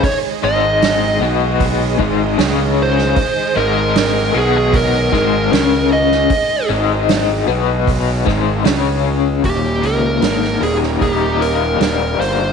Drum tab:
HH |o---o---o---o---|o---o---o---o---|o---o---o---o---|o-o-o-o-o-o-o-o-|
SD |----o-------o--o|----o-----o-o--o|----o-----o-o---|----oo-o----o---|
BD |o-------o-o-----|o-------o-o-----|o-------o-o-----|o-------o-------|